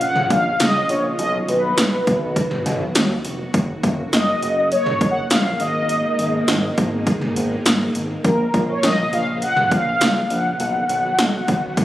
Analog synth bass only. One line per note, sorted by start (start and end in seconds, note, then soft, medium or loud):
0.30 0.51 A#1 loud
0.60 0.80 C#2 medium
0.89 1.10 A#1 medium
1.19 1.39 B1 loud
1.48 1.69 B1 medium
1.78 1.98 B1 medium
2.07 2.38 B1 loud
2.66 2.86 B1 loud
2.95 3.16 D#2 medium
3.25 3.45 F1 medium
3.54 3.75 F#1 loud
3.83 4.04 F#1 loud
4.13 4.33 F#1 loud
4.42 4.73 F#1 loud
5.01 5.22 F#1 loud
5.30 5.51 A#1 medium
5.60 6.01 G#1 medium
6.19 6.39 G#1 loud
6.48 6.69 G#1 loud
6.78 7.09 G#1 loud
7.36 7.57 G#1 loud
7.66 7.86 G#1 loud
7.95 8.16 G#1 medium
8.24 8.45 A#1 loud
8.54 8.75 A#1 medium
8.83 9.04 A#1 loud
9.13 9.44 A#1 medium
9.71 9.92 A#1 loud
10.01 10.22 C#2 medium
10.30 10.51 A#1 medium
10.60 10.80 B1 loud
10.89 11.10 B1 medium
11.19 11.39 B1 loud
11.48 11.79 B1 loud